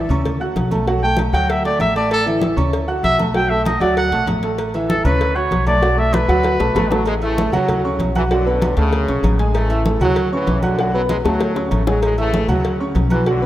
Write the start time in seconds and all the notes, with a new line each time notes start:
0.09 D2 C#4 C#5 C#6, high conga, low conga, low agogo
0.25 cowbell, high conga, low conga, low agogo
0.40 F#4 F#5 F#6, high conga
0.56 B1, cowbell, high conga, low timbale, low agogo
0.71 A3 A4 A5, high conga, low agogo
0.87 F#3 F#4 F#5, cowbell, high conga
1.02 A3 A4 G5 A5, high conga
1.17 cowbell, high conga, low timbale, low agogo
1.33 D2 F#3 F#4 F#5 G5, cowbell, high conga
1.48 E5, cowbell, high conga, low agogo
1.65 A3 A4 D5 A5, cowbell, high conga
1.79 A1 E5, cowbell, high conga, low timbale, low agogo
1.95 A3 A4 D5 A5, cowbell, high conga
2.11 A4, cowbell, high conga, low agogo
2.26 E3 E4 E5, high conga, low agogo
2.42 cowbell, high conga, low timbale
2.57 D2 C#4 C#5 C#6, high conga, low conga, low agogo
2.73 cowbell, high conga, low agogo
2.88 F#4 F#5 F#6, high conga
3.03 B1 E5, cowbell, high conga, low timbale, low agogo
3.18 A3 A4 A5, high conga, low agogo
3.34 F#3 F#4 F#5 G5, cowbell, high conga
3.50 A3 A4 E5 A5, high conga
3.65 D#5, cowbell, high conga, low timbale, low agogo
3.80 D2 F#3 F#4 D5 F#5, cowbell, high conga
3.97 F#5, cowbell, high conga, low agogo
4.12 B1 A3 A4 A5, cowbell, high conga
4.26 A1, cowbell, high conga, low timbale, low agogo
4.43 A3 A4 A5, cowbell, high conga
4.58 cowbell, high conga, low agogo
4.74 E3 E4 E5, high conga, low agogo
4.89 A4, cowbell, high conga, low timbale
5.04 D2 C#4 B4 C#5 C#6, high conga, low conga, low agogo
5.21 cowbell, high conga, low agogo
5.35 F#4 C#5 F#5 F#6, high conga
5.51 B1, cowbell, high conga, low timbale, low agogo
5.66 A3 A4 D5 A5, high conga, low agogo
5.82 F#3 F#4 F#5, cowbell, high conga
5.97 A3 A4 E5 A5, high conga
6.13 B4, cowbell, high conga, high timbale, low agogo
6.28 D2 F#3 F#4 F#5, cowbell, high conga
6.43 cowbell, high conga, high timbale, low agogo
6.59 B1 A3 A4 A5, cowbell, high bongo, high conga, low timbale
6.75 A1 A3, cowbell, high bongo, high conga, low timbale, low agogo
6.91 F#3 A3 A4 A5, cowbell, low bongo, high conga, low timbale
7.06 C#3 E3 G#3, cowbell, high conga, low agogo
7.22 C#3 E3 A3 E4 E5 E6, high conga, low agogo
7.37 A3 A4 A5, cowbell, high conga, low timbale
7.52 D2 A2 C#3 F#3 F#4 F#5, high conga, low conga, low agogo
7.69 cowbell, high conga, low conga, low agogo
7.85 C#4 C#5 C#6, high conga
7.99 B1, cowbell, high conga, low timbale, low agogo
8.15 E3 F#4 F#5 F#6, high conga, low agogo
8.31 F#2 A2 D3 F#3 F#4 F#5, cowbell, high conga
8.46 B3 B4 B5, high conga
8.62 cowbell, high conga, low timbale, low agogo
8.76 D2 F#2 A2 C#3 A3 A4 A5, cowbell, high conga
8.93 cowbell, high conga, low agogo
9.08 B1 C#4 C#5 C#6, cowbell, high conga
9.23 A1, cowbell, high conga, low timbale, low agogo
9.39 G#3 G#4 G#5, cowbell, high conga
9.54 C#3 E3 A3, cowbell, high conga, low agogo
9.69 E4 E5 E6, high conga, low agogo
9.85 A3 A4 A5, cowbell, high conga, low timbale
10.00 D2 A2 C#3 F#3 F#4 F#5, high conga, low conga, low agogo
10.16 cowbell, high conga, low agogo
10.32 A2 C#3 E3 C#4 C#5 C#6, high conga
10.47 B1, cowbell, high conga, low timbale, low agogo
10.62 F#2 A2 D3 F#4 F#5 F#6, high conga, low agogo
10.79 F#3 F#4 F#5, cowbell, high conga
10.94 F#3 B3 B4 B5, high conga
11.09 G#3, cowbell, high conga, low timbale, low agogo
11.24 D2 A2 C#3 F#3 A3 A4 A5, cowbell, high bongo, high conga
11.40 cowbell, high bongo, high conga, low agogo
11.56 C#4 C#5 C#6, cowbell, high bongo, high conga
11.71 A1 A3, cowbell, high conga, low timbale, low agogo
11.87 F#3 G#3 G#4 G#5, cowbell, low bongo, high conga
12.02 C#3 E3 G#3, cowbell, high conga, low agogo
12.18 C#3 E3 A3 E4 E5 E6, high conga, low agogo
12.33 A3 A4 A5, cowbell, high conga, low timbale
12.48 D2 A2 C#3 F#3 F#4 F#5, high conga, low conga, low agogo
12.64 cowbell, high conga, low agogo
12.80 C#4 C#5 C#6, high conga
12.95 B1, cowbell, high conga, low timbale, low agogo
13.10 E3 F#4 F#5 F#6, high conga, low agogo
13.26 F#2 A2 D3 F#3 F#4 F#5, cowbell, high conga
13.42 B3 B4 B5, high conga